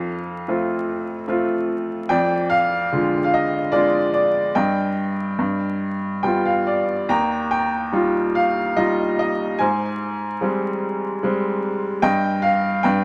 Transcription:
upright piano
Already playing: F2 A4 F5
0.48 A3 C4 F4
1.28 A3 C4 F4
2.09 F2 D5 G5
2.50 F5
2.92 D3 G#3 F4
3.24 F5
3.34 D#5
3.72 G#3 D4 F4 D5
4.14 D5
4.55 G2 D#5 G5
5.39 G2
6.23 G3 B3 F4 G5
6.45 F5
6.67 D5
7.09 D#2 G5 A#5
7.51 G5
7.92 G3 D#4 F4
8.35 F5
8.77 G3 D#4 F4 D#5
9.19 D#5
9.59 G#2 C5 G#5
10.41 G3 G#3 C4
11.23 G3 G#3 C4
12.02 G2 D#5 G5
12.42 F5
12.83 G2 B4 G5

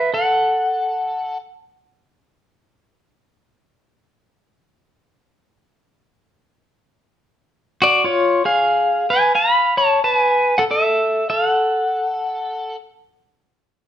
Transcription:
pedal steel guitar
Already playing: E5
0.14 A4 F#5
7.82 F#4 D5
8.04 F4 C#5
8.45 G#4 F5
9.10 B4 G#5
9.35 F5 B5
9.77 C#5 A5
10.04 B4 A5
10.16 G#5
10.58 A4 F#5
10.71 A4 E5
11.30 A4 F5
11.47 F#5

